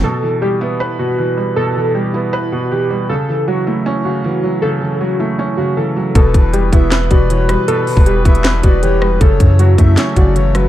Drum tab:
HH |----------------|----------------|----------------|----------------|
CP |----------------|----------------|----------------|----------------|
SD |----------------|----------------|----------------|----------------|
BD |----------------|----------------|----------------|----------------|

HH |x-x-x-x-x-x-x-x-|x-o-x-xxx-x-x---|x-x-x-x-x-x-x-x-|
CP |--------x-------|--------x-------|--------x-------|
SD |--------o-----r-|--------o-----r-|--------o-----r-|
BD |o-o---o---o-----|---o--o---o-----|o-o---o---o-----|